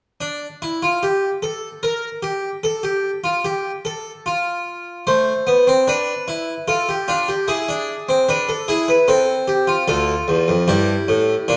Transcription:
harpsichord
0.21 D4
0.62 E4
0.83 F4
1.03 G4
1.43 A4
1.83 A#4
2.23 G4
2.64 A4
2.83 G4
3.24 F4
3.45 G4
3.85 A4
4.26 F4
5.07 A3 C5
5.47 B3
5.67 C4
5.88 D4 B4
6.28 E4
6.68 F4 A4
6.89 G4
7.08 D4 F4
7.28 G4
7.48 E4 G#4
7.69 D4
8.09 C4
8.29 D4 B4
8.49 A4
8.68 E4 G#4
8.88 B4
9.08 C4 A4
9.48 G4
9.67 F4
9.88 D2 F4 A4
10.28 E2
10.48 F2
10.68 G2 E4 G4
11.08 A2
11.48 A#2 D4

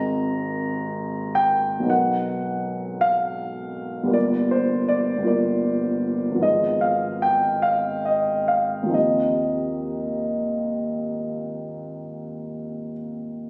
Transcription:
grand piano
Already playing: G#1 G#3 C4 D#4 A#4 A#5
1.35 G5
1.79 B1 F#3
1.84 B3 D#4
1.89 A#4 F#5
3.01 F5
4.03 G1 G3
4.08 A#3 F4
4.13 A#4 D5
4.51 C5
4.88 D5
5.17 G1 G3
5.22 A#3 F4
5.27 A#4 D5
6.31 G#1 F3
6.36 B3 D#4
6.42 G#4 D#5
6.81 F5
7.22 G5
7.62 F5
8.05 D#5
8.48 F5
8.83 D#2 F3
8.88 C4 D#4
8.93 G4 D#5

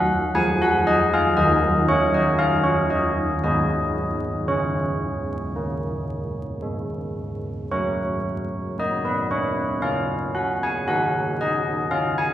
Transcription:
church bells
Already playing: F#3 A#4 F#5
0.35 F3 G#5
0.62 F#5
0.87 D#5
1.14 F5
1.37 D#3 A#4 D#5
1.88 C#5
2.14 D#5
2.39 D#4 F5
2.64 C#5
2.90 D#5
3.44 G#3 B4 D#5
4.48 C#4 G#4 C#5
5.56 A#3
6.63 G#3
7.71 F#3 A#4 C#5
8.79 A#3 D#5
9.05 B4
9.31 C#5
9.82 C#4 F5
10.35 F#5
10.63 G#5
10.88 D#4 A#4 F#5
11.41 D#5
11.91 C#4 F5
12.18 G#5

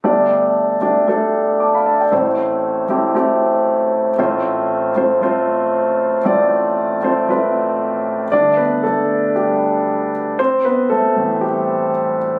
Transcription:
upright piano
0.04 G1 G2 A3 D4 G4 D5
0.81 A3 D4 G4 D5
1.08 A3 D4 G4 A4
1.60 A5 D6
1.75 F5 B5
1.86 E5 A5
2.01 D5 G5
2.12 A1 A2 A3 C4 E4 C5
2.88 A3 C4 E4 G4
3.15 A3 C4 E4 G4
4.18 A1 A2 A3 C4 F4 C5
4.96 A3 C4 F4 C5
5.21 A3 C4 F4 C5
6.25 A1 A2 A3 C4 F4 D5
7.03 A3 C4 F4 C5
7.29 A3 C4 F4 B4
8.32 G2 D3 A3 D4 D5
8.57 B3 B4
8.83 A3 A4
9.36 G3 G4
10.39 C4 C5
10.65 B3 B4
10.90 A3 A4
11.16 A2 E3 C4
11.41 G3 G4

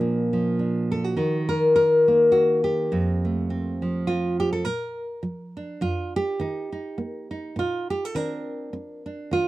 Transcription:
nylon-string guitar
Already playing: A#2 F3 D4
0.01 A#3
0.33 F3
0.59 D4
0.92 A4
1.04 F#4
1.17 D#3 D#4
1.49 A#4
1.76 A#4
2.08 A#3
2.32 F#4
2.64 G4
2.92 F2 C4
3.25 A3
3.50 C4
3.82 F3
4.07 C4 F4
4.40 G4
4.53 A4
4.65 A#2 A#4
5.23 F3
5.57 D4
5.81 F2 F4
6.16 G4
6.40 D#3 D#4
6.72 D#4
6.98 A#3
7.31 D#4
7.56 A#2 F4
7.90 G4
8.05 A4
8.15 D#3 C4 D4 A#4
8.73 C4
9.06 D4
9.31 D#3 F4

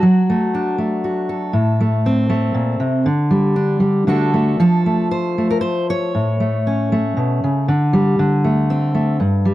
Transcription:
steel-string acoustic guitar
Already playing: F#4
0.03 F#3
0.30 A3
0.55 D4
0.78 A3
1.04 F#4
1.29 A4
1.53 A2
1.81 A3
2.06 C4
2.30 A3
2.54 A#2
2.80 C3
3.06 D3
3.31 G3
3.56 D4
3.80 G3
4.07 D3 A3 D4 F#4 A4
4.34 A3
4.60 F3 A4
4.86 A3
5.11 C5
5.38 A3
5.51 A#4
5.61 C5
5.90 C#5
6.15 A2
6.40 A3
6.67 C#4
6.92 A3
7.17 B2
7.44 C#3
7.68 D3
7.93 G3
8.19 D3
8.44 A3
8.70 C4
8.95 A3
9.20 G2
9.45 G3

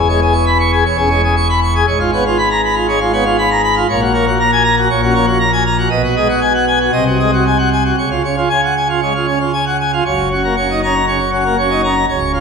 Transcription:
pipe organ
Already playing: E1 E2
0.08 G#3 C#5
0.22 G#4
0.33 C#6
0.47 B5
0.60 C#6
0.72 G#4
0.85 E1 E2 C#5
0.97 C#4 G#4
1.10 G#3 C#5
1.24 G#4
1.37 C#6
1.50 B5
1.63 C#6
1.75 G#4
1.87 G#1 G#2 C#5
2.00 F4
2.13 B3 C#5
2.27 F4
2.38 B5
2.51 A#5
2.65 B5
2.75 F4
2.88 G#3 C#5
3.00 F4
3.13 B3 C#5
3.25 F4
3.38 B5
3.51 A#5
3.64 B5
3.77 F4
3.90 A#1 A#2 C#5
4.01 F#4
4.14 A#3 C#5
4.27 F#4
4.40 A#5
4.53 G#5
4.64 A#5
4.77 F#4
4.90 A#1 A#2 C#5
5.03 C#4 F#4
5.14 A#3 C#5
5.27 F#4
5.40 A#5
5.53 G#5
5.66 A#5
5.78 F#4
5.90 B1 B2 D#5
6.04 F#4
6.16 G#3 D#5
6.29 F#4
6.41 G#5
6.55 F#5
6.67 G#5
6.80 F#4
6.92 C2 C3 D#5
7.07 F#4
7.19 G#3 D#5
7.33 F#4
7.47 G#5
7.58 F#5
7.73 G#5
7.85 F#4
7.98 C#2 C#3 C#5
8.11 F4
8.25 C#4 C#5
8.37 F4
8.50 G#5
8.64 F#5
8.77 G#5
8.89 F4
9.02 G#3 C#5
9.15 F4
9.27 C#4 C#5
9.40 F4
9.53 G#5
9.66 F#5
9.80 G#5
9.93 F4
10.05 F#1 F#2 C#5
10.31 C#4 F#4
10.44 A#3
10.56 C#4 C#5
10.71 D#4
10.83 C#4 A#5
11.08 C#3 C#5
11.32 C#4 F#4
11.46 A#3
11.58 C#4 C#5
11.71 D#4
11.83 C#4 A#5
12.09 C#1 C#2 C#5
12.34 F4

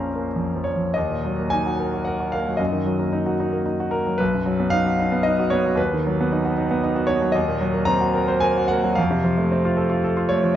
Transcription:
grand piano
Already playing: A#1 F2 F3 A#3 C#4 A#4 C5 F5 A#5 C6
0.15 A#3
0.36 F2
0.55 F3
0.64 C#5
0.76 F2
0.94 D#2 D#5
1.10 A#2
1.25 F#3
1.39 A#3
1.50 D#4 G#5
1.66 F#4
1.80 A#4
1.94 F#4
2.05 A#4 F#5
2.20 F#4
2.32 A#3 F5
2.47 F#3
2.57 F#2 D#5
2.72 D#3
2.86 F#3
2.99 A#3
3.13 D#4
3.26 F#4
3.40 D#4
3.52 A#3
3.66 D#4
3.80 F#4
3.91 A#3 A#4
4.07 F#3
4.18 B1 B4
4.33 F#2
4.46 F#3
4.60 B3
4.70 D#4 F5
4.86 F#4
4.99 D#4
5.12 B3
5.23 D#4 D#5
5.39 F#4
5.50 B3 C#5
5.66 F#3
5.75 D#2 B4
5.94 D#3
6.07 F#3
6.21 B3
6.32 D#4
6.45 F#4
6.58 D#4
6.71 B3
6.83 D#4
6.96 F#4
7.07 B3 C#5
7.22 F#3
7.32 D#2 D#5
7.48 A#2
7.61 F#3
7.73 A#3
7.85 C4 A#5
8.01 F#4
8.14 A#4
8.28 C5
8.40 A#4 G#5
8.57 F#4
8.68 A#3 F#5
8.84 F#3
8.95 F2 F5
9.11 C3
9.24 F3
9.38 A3
9.52 C4
9.65 F4
9.77 A4
9.90 F4
10.04 A4
10.17 F4
10.29 A3 C#5
10.44 F3

